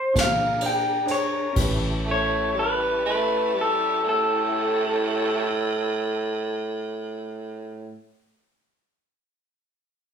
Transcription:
0, 0, Header, 1, 7, 480
1, 0, Start_track
1, 0, Tempo, 928793
1, 804, Tempo, 991736
1, 805, Time_signature, 12, 3, 24, 8
1, 4956, End_track
2, 0, Start_track
2, 0, Title_t, "Clean electric guitar"
2, 0, Program_c, 0, 27
2, 0, Note_on_c, 0, 72, 75
2, 88, Note_off_c, 0, 72, 0
2, 105, Note_on_c, 0, 77, 93
2, 319, Note_off_c, 0, 77, 0
2, 341, Note_on_c, 0, 79, 68
2, 561, Note_off_c, 0, 79, 0
2, 576, Note_on_c, 0, 73, 80
2, 808, Note_off_c, 0, 73, 0
2, 1074, Note_on_c, 0, 73, 87
2, 1292, Note_off_c, 0, 73, 0
2, 1306, Note_on_c, 0, 71, 84
2, 1528, Note_off_c, 0, 71, 0
2, 1554, Note_on_c, 0, 71, 94
2, 1772, Note_off_c, 0, 71, 0
2, 1800, Note_on_c, 0, 69, 77
2, 2015, Note_off_c, 0, 69, 0
2, 2030, Note_on_c, 0, 69, 90
2, 3920, Note_off_c, 0, 69, 0
2, 4956, End_track
3, 0, Start_track
3, 0, Title_t, "Tonewheel organ"
3, 0, Program_c, 1, 16
3, 93, Note_on_c, 1, 62, 59
3, 93, Note_on_c, 1, 68, 64
3, 96, Note_on_c, 1, 70, 61
3, 804, Note_off_c, 1, 62, 0
3, 804, Note_off_c, 1, 68, 0
3, 806, Note_off_c, 1, 70, 0
3, 811, Note_on_c, 1, 67, 61
3, 812, Note_on_c, 1, 73, 67
3, 817, Note_on_c, 1, 69, 61
3, 818, Note_on_c, 1, 64, 61
3, 2701, Note_off_c, 1, 67, 0
3, 2702, Note_off_c, 1, 73, 0
3, 2707, Note_off_c, 1, 69, 0
3, 2708, Note_off_c, 1, 64, 0
3, 4956, End_track
4, 0, Start_track
4, 0, Title_t, "Upright piano"
4, 0, Program_c, 2, 0
4, 71, Note_on_c, 2, 62, 48
4, 74, Note_on_c, 2, 68, 48
4, 80, Note_on_c, 2, 72, 54
4, 249, Note_off_c, 2, 62, 0
4, 250, Note_off_c, 2, 68, 0
4, 253, Note_off_c, 2, 72, 0
4, 316, Note_on_c, 2, 62, 48
4, 318, Note_on_c, 2, 68, 47
4, 321, Note_on_c, 2, 72, 53
4, 494, Note_off_c, 2, 62, 0
4, 496, Note_off_c, 2, 68, 0
4, 497, Note_off_c, 2, 72, 0
4, 546, Note_on_c, 2, 62, 50
4, 548, Note_on_c, 2, 68, 48
4, 554, Note_on_c, 2, 72, 57
4, 737, Note_off_c, 2, 62, 0
4, 738, Note_off_c, 2, 68, 0
4, 741, Note_off_c, 2, 72, 0
4, 789, Note_on_c, 2, 61, 61
4, 803, Note_on_c, 2, 67, 58
4, 814, Note_on_c, 2, 71, 67
4, 2680, Note_off_c, 2, 61, 0
4, 2693, Note_off_c, 2, 67, 0
4, 2704, Note_off_c, 2, 71, 0
4, 4956, End_track
5, 0, Start_track
5, 0, Title_t, "Tenor saxophone"
5, 0, Program_c, 3, 66
5, 1052, Note_on_c, 3, 57, 82
5, 1286, Note_on_c, 3, 55, 76
5, 1293, Note_off_c, 3, 57, 0
5, 1517, Note_off_c, 3, 55, 0
5, 1529, Note_on_c, 3, 57, 91
5, 1766, Note_on_c, 3, 55, 87
5, 1773, Note_off_c, 3, 57, 0
5, 1997, Note_off_c, 3, 55, 0
5, 2003, Note_on_c, 3, 45, 95
5, 3893, Note_off_c, 3, 45, 0
5, 4956, End_track
6, 0, Start_track
6, 0, Title_t, "Fingered electric bass"
6, 0, Program_c, 4, 33
6, 81, Note_on_c, 4, 46, 80
6, 785, Note_off_c, 4, 46, 0
6, 809, Note_on_c, 4, 33, 87
6, 2699, Note_off_c, 4, 33, 0
6, 4956, End_track
7, 0, Start_track
7, 0, Title_t, "Drums"
7, 82, Note_on_c, 9, 36, 85
7, 82, Note_on_c, 9, 51, 86
7, 95, Note_on_c, 9, 38, 115
7, 133, Note_off_c, 9, 36, 0
7, 134, Note_off_c, 9, 51, 0
7, 147, Note_off_c, 9, 38, 0
7, 314, Note_on_c, 9, 51, 67
7, 366, Note_off_c, 9, 51, 0
7, 558, Note_on_c, 9, 51, 61
7, 610, Note_off_c, 9, 51, 0
7, 807, Note_on_c, 9, 49, 82
7, 808, Note_on_c, 9, 36, 96
7, 855, Note_off_c, 9, 49, 0
7, 857, Note_off_c, 9, 36, 0
7, 4956, End_track
0, 0, End_of_file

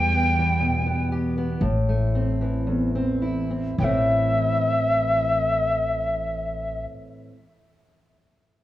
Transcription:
0, 0, Header, 1, 4, 480
1, 0, Start_track
1, 0, Key_signature, 0, "minor"
1, 0, Tempo, 970874
1, 799, Tempo, 1050788
1, 1279, Tempo, 1129944
1, 1758, Time_signature, 4, 2, 24, 8
1, 1759, Tempo, 1174168
1, 3738, End_track
2, 0, Start_track
2, 0, Title_t, "Tin whistle"
2, 0, Program_c, 0, 75
2, 0, Note_on_c, 0, 79, 80
2, 536, Note_off_c, 0, 79, 0
2, 1758, Note_on_c, 0, 79, 61
2, 1777, Note_on_c, 0, 76, 66
2, 1781, Note_off_c, 0, 79, 0
2, 3006, Note_off_c, 0, 76, 0
2, 3738, End_track
3, 0, Start_track
3, 0, Title_t, "Steel-string acoustic guitar"
3, 0, Program_c, 1, 25
3, 0, Note_on_c, 1, 40, 68
3, 0, Note_on_c, 1, 55, 55
3, 69, Note_on_c, 1, 59, 52
3, 190, Note_on_c, 1, 52, 51
3, 298, Note_on_c, 1, 47, 53
3, 421, Note_off_c, 1, 59, 0
3, 427, Note_on_c, 1, 59, 53
3, 554, Note_on_c, 1, 67, 54
3, 673, Note_off_c, 1, 59, 0
3, 680, Note_on_c, 1, 59, 51
3, 762, Note_off_c, 1, 47, 0
3, 767, Note_off_c, 1, 52, 0
3, 770, Note_off_c, 1, 67, 0
3, 794, Note_off_c, 1, 40, 0
3, 795, Note_off_c, 1, 55, 0
3, 795, Note_on_c, 1, 45, 62
3, 801, Note_off_c, 1, 59, 0
3, 923, Note_on_c, 1, 57, 51
3, 1042, Note_on_c, 1, 60, 50
3, 1162, Note_on_c, 1, 52, 53
3, 1277, Note_off_c, 1, 45, 0
3, 1279, Note_on_c, 1, 40, 60
3, 1395, Note_off_c, 1, 60, 0
3, 1400, Note_on_c, 1, 60, 53
3, 1514, Note_on_c, 1, 64, 54
3, 1630, Note_off_c, 1, 60, 0
3, 1635, Note_on_c, 1, 60, 46
3, 1728, Note_off_c, 1, 60, 0
3, 1731, Note_off_c, 1, 52, 0
3, 1732, Note_off_c, 1, 57, 0
3, 1754, Note_on_c, 1, 45, 55
3, 1759, Note_off_c, 1, 40, 0
3, 1762, Note_on_c, 1, 52, 55
3, 1770, Note_on_c, 1, 57, 47
3, 1778, Note_on_c, 1, 60, 52
3, 1781, Note_off_c, 1, 64, 0
3, 1786, Note_on_c, 1, 64, 43
3, 3185, Note_off_c, 1, 45, 0
3, 3193, Note_off_c, 1, 52, 0
3, 3200, Note_off_c, 1, 57, 0
3, 3209, Note_off_c, 1, 60, 0
3, 3216, Note_off_c, 1, 64, 0
3, 3738, End_track
4, 0, Start_track
4, 0, Title_t, "Upright bass"
4, 0, Program_c, 2, 32
4, 0, Note_on_c, 2, 40, 79
4, 775, Note_off_c, 2, 40, 0
4, 795, Note_on_c, 2, 33, 79
4, 1739, Note_off_c, 2, 33, 0
4, 1754, Note_on_c, 2, 33, 79
4, 3002, Note_off_c, 2, 33, 0
4, 3738, End_track
0, 0, End_of_file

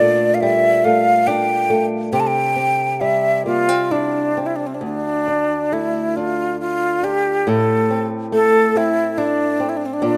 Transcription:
0, 0, Header, 1, 3, 480
1, 0, Start_track
1, 0, Key_signature, -1, "minor"
1, 0, Tempo, 857143
1, 1186, Time_signature, 3, 2, 24, 8
1, 1677, Tempo, 910470
1, 2637, Tempo, 882353
1, 4077, Tempo, 851064
1, 5605, End_track
2, 0, Start_track
2, 0, Title_t, "Flute"
2, 0, Program_c, 0, 73
2, 0, Note_on_c, 0, 74, 80
2, 192, Note_on_c, 0, 77, 53
2, 201, Note_off_c, 0, 74, 0
2, 227, Note_on_c, 0, 76, 74
2, 236, Note_off_c, 0, 77, 0
2, 472, Note_on_c, 0, 77, 76
2, 480, Note_off_c, 0, 76, 0
2, 710, Note_on_c, 0, 79, 73
2, 719, Note_off_c, 0, 77, 0
2, 1041, Note_off_c, 0, 79, 0
2, 1191, Note_on_c, 0, 79, 75
2, 1232, Note_on_c, 0, 81, 59
2, 1240, Note_off_c, 0, 79, 0
2, 1270, Note_on_c, 0, 79, 77
2, 1279, Note_off_c, 0, 81, 0
2, 1682, Note_on_c, 0, 76, 63
2, 1689, Note_off_c, 0, 79, 0
2, 1917, Note_off_c, 0, 76, 0
2, 1921, Note_on_c, 0, 65, 67
2, 2162, Note_on_c, 0, 62, 56
2, 2170, Note_off_c, 0, 65, 0
2, 2450, Note_on_c, 0, 64, 41
2, 2458, Note_off_c, 0, 62, 0
2, 2501, Note_on_c, 0, 62, 46
2, 2509, Note_off_c, 0, 64, 0
2, 2558, Note_on_c, 0, 60, 42
2, 2566, Note_off_c, 0, 62, 0
2, 2599, Note_on_c, 0, 62, 42
2, 2607, Note_off_c, 0, 60, 0
2, 2643, Note_off_c, 0, 62, 0
2, 2654, Note_on_c, 0, 62, 60
2, 3134, Note_on_c, 0, 64, 60
2, 3142, Note_off_c, 0, 62, 0
2, 3368, Note_on_c, 0, 65, 64
2, 3376, Note_off_c, 0, 64, 0
2, 3605, Note_off_c, 0, 65, 0
2, 3610, Note_on_c, 0, 65, 64
2, 3847, Note_on_c, 0, 67, 64
2, 3855, Note_off_c, 0, 65, 0
2, 4091, Note_on_c, 0, 69, 74
2, 4100, Note_off_c, 0, 67, 0
2, 4422, Note_off_c, 0, 69, 0
2, 4574, Note_on_c, 0, 69, 74
2, 4814, Note_on_c, 0, 64, 71
2, 4823, Note_off_c, 0, 69, 0
2, 5044, Note_on_c, 0, 62, 64
2, 5053, Note_off_c, 0, 64, 0
2, 5333, Note_on_c, 0, 64, 54
2, 5341, Note_off_c, 0, 62, 0
2, 5377, Note_on_c, 0, 62, 49
2, 5386, Note_off_c, 0, 64, 0
2, 5427, Note_on_c, 0, 60, 50
2, 5436, Note_off_c, 0, 62, 0
2, 5471, Note_on_c, 0, 62, 56
2, 5479, Note_off_c, 0, 60, 0
2, 5519, Note_off_c, 0, 62, 0
2, 5537, Note_on_c, 0, 62, 68
2, 5605, Note_off_c, 0, 62, 0
2, 5605, End_track
3, 0, Start_track
3, 0, Title_t, "Nylon-string guitar"
3, 0, Program_c, 1, 24
3, 0, Note_on_c, 1, 46, 66
3, 0, Note_on_c, 1, 57, 44
3, 0, Note_on_c, 1, 62, 53
3, 5, Note_off_c, 1, 57, 0
3, 5, Note_on_c, 1, 57, 47
3, 238, Note_on_c, 1, 55, 51
3, 470, Note_off_c, 1, 57, 0
3, 475, Note_on_c, 1, 57, 49
3, 709, Note_off_c, 1, 62, 0
3, 715, Note_on_c, 1, 62, 55
3, 945, Note_off_c, 1, 57, 0
3, 952, Note_on_c, 1, 57, 50
3, 1188, Note_off_c, 1, 46, 0
3, 1191, Note_off_c, 1, 62, 0
3, 1191, Note_on_c, 1, 48, 65
3, 1237, Note_off_c, 1, 57, 0
3, 1435, Note_on_c, 1, 60, 41
3, 1683, Note_off_c, 1, 55, 0
3, 1685, Note_on_c, 1, 55, 43
3, 1918, Note_off_c, 1, 60, 0
3, 1921, Note_on_c, 1, 58, 40
3, 2042, Note_off_c, 1, 58, 0
3, 2042, Note_on_c, 1, 60, 35
3, 2160, Note_on_c, 1, 64, 42
3, 2397, Note_off_c, 1, 60, 0
3, 2404, Note_on_c, 1, 60, 38
3, 2634, Note_on_c, 1, 38, 49
3, 2640, Note_off_c, 1, 48, 0
3, 2688, Note_off_c, 1, 60, 0
3, 2690, Note_off_c, 1, 55, 0
3, 2888, Note_on_c, 1, 62, 38
3, 2904, Note_off_c, 1, 64, 0
3, 3130, Note_on_c, 1, 57, 38
3, 3367, Note_off_c, 1, 62, 0
3, 3374, Note_on_c, 1, 62, 38
3, 3835, Note_off_c, 1, 62, 0
3, 3841, Note_on_c, 1, 62, 39
3, 4075, Note_off_c, 1, 38, 0
3, 4080, Note_on_c, 1, 45, 53
3, 4083, Note_on_c, 1, 64, 46
3, 4126, Note_off_c, 1, 62, 0
3, 4327, Note_on_c, 1, 60, 38
3, 4560, Note_off_c, 1, 57, 0
3, 4562, Note_on_c, 1, 57, 42
3, 4800, Note_off_c, 1, 60, 0
3, 4807, Note_on_c, 1, 60, 43
3, 5038, Note_off_c, 1, 64, 0
3, 5045, Note_on_c, 1, 64, 47
3, 5276, Note_off_c, 1, 60, 0
3, 5282, Note_on_c, 1, 60, 44
3, 5517, Note_off_c, 1, 45, 0
3, 5519, Note_on_c, 1, 46, 62
3, 5520, Note_off_c, 1, 64, 0
3, 5522, Note_on_c, 1, 62, 48
3, 5566, Note_off_c, 1, 60, 0
3, 5605, Note_off_c, 1, 46, 0
3, 5605, Note_off_c, 1, 57, 0
3, 5605, Note_off_c, 1, 62, 0
3, 5605, End_track
0, 0, End_of_file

